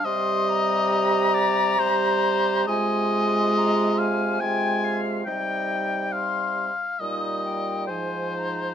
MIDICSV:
0, 0, Header, 1, 6, 480
1, 0, Start_track
1, 0, Key_signature, -3, "minor"
1, 0, Tempo, 875912
1, 25, Time_signature, 3, 2, 24, 8
1, 1945, Tempo, 863309
1, 3865, Tempo, 879765
1, 4345, Tempo, 950872
1, 4779, End_track
2, 0, Start_track
2, 0, Title_t, "Flute"
2, 0, Program_c, 0, 73
2, 28, Note_on_c, 0, 84, 84
2, 270, Note_on_c, 0, 82, 103
2, 278, Note_off_c, 0, 84, 0
2, 1471, Note_on_c, 0, 80, 82
2, 1480, Note_off_c, 0, 82, 0
2, 1948, Note_off_c, 0, 80, 0
2, 1952, Note_on_c, 0, 82, 76
2, 2189, Note_on_c, 0, 80, 69
2, 2198, Note_off_c, 0, 82, 0
2, 2425, Note_on_c, 0, 79, 80
2, 2433, Note_off_c, 0, 80, 0
2, 2664, Note_on_c, 0, 77, 75
2, 2672, Note_off_c, 0, 79, 0
2, 2904, Note_on_c, 0, 75, 62
2, 2912, Note_off_c, 0, 77, 0
2, 3381, Note_off_c, 0, 75, 0
2, 3384, Note_on_c, 0, 84, 69
2, 3710, Note_off_c, 0, 84, 0
2, 3870, Note_on_c, 0, 87, 65
2, 4088, Note_off_c, 0, 87, 0
2, 4107, Note_on_c, 0, 79, 59
2, 4350, Note_on_c, 0, 80, 56
2, 4358, Note_off_c, 0, 79, 0
2, 4588, Note_on_c, 0, 82, 58
2, 4596, Note_off_c, 0, 80, 0
2, 4779, Note_off_c, 0, 82, 0
2, 4779, End_track
3, 0, Start_track
3, 0, Title_t, "Oboe"
3, 0, Program_c, 1, 68
3, 25, Note_on_c, 1, 75, 114
3, 735, Note_on_c, 1, 74, 102
3, 743, Note_off_c, 1, 75, 0
3, 981, Note_on_c, 1, 72, 107
3, 989, Note_off_c, 1, 74, 0
3, 1460, Note_off_c, 1, 72, 0
3, 1464, Note_on_c, 1, 75, 117
3, 2187, Note_on_c, 1, 77, 89
3, 2195, Note_off_c, 1, 75, 0
3, 2420, Note_on_c, 1, 80, 101
3, 2429, Note_off_c, 1, 77, 0
3, 2747, Note_off_c, 1, 80, 0
3, 2894, Note_on_c, 1, 79, 96
3, 3376, Note_on_c, 1, 77, 83
3, 3384, Note_off_c, 1, 79, 0
3, 3862, Note_on_c, 1, 75, 88
3, 3870, Note_off_c, 1, 77, 0
3, 4335, Note_off_c, 1, 75, 0
3, 4339, Note_on_c, 1, 72, 76
3, 4779, Note_off_c, 1, 72, 0
3, 4779, End_track
4, 0, Start_track
4, 0, Title_t, "Clarinet"
4, 0, Program_c, 2, 71
4, 28, Note_on_c, 2, 67, 80
4, 960, Note_off_c, 2, 67, 0
4, 985, Note_on_c, 2, 67, 84
4, 1458, Note_off_c, 2, 67, 0
4, 1469, Note_on_c, 2, 65, 85
4, 2402, Note_off_c, 2, 65, 0
4, 2422, Note_on_c, 2, 65, 69
4, 2886, Note_off_c, 2, 65, 0
4, 2896, Note_on_c, 2, 63, 66
4, 3698, Note_off_c, 2, 63, 0
4, 3869, Note_on_c, 2, 63, 57
4, 4324, Note_off_c, 2, 63, 0
4, 4348, Note_on_c, 2, 63, 50
4, 4779, Note_off_c, 2, 63, 0
4, 4779, End_track
5, 0, Start_track
5, 0, Title_t, "French horn"
5, 0, Program_c, 3, 60
5, 33, Note_on_c, 3, 55, 86
5, 962, Note_off_c, 3, 55, 0
5, 984, Note_on_c, 3, 55, 78
5, 1465, Note_on_c, 3, 56, 90
5, 1473, Note_off_c, 3, 55, 0
5, 2419, Note_off_c, 3, 56, 0
5, 2423, Note_on_c, 3, 56, 69
5, 2887, Note_off_c, 3, 56, 0
5, 2900, Note_on_c, 3, 55, 72
5, 3700, Note_off_c, 3, 55, 0
5, 3870, Note_on_c, 3, 55, 53
5, 4354, Note_on_c, 3, 53, 59
5, 4361, Note_off_c, 3, 55, 0
5, 4779, Note_off_c, 3, 53, 0
5, 4779, End_track
6, 0, Start_track
6, 0, Title_t, "Bassoon"
6, 0, Program_c, 4, 70
6, 27, Note_on_c, 4, 48, 85
6, 1443, Note_off_c, 4, 48, 0
6, 1468, Note_on_c, 4, 48, 74
6, 2874, Note_off_c, 4, 48, 0
6, 2900, Note_on_c, 4, 48, 60
6, 3700, Note_off_c, 4, 48, 0
6, 3868, Note_on_c, 4, 46, 56
6, 4347, Note_on_c, 4, 44, 49
6, 4355, Note_off_c, 4, 46, 0
6, 4779, Note_off_c, 4, 44, 0
6, 4779, End_track
0, 0, End_of_file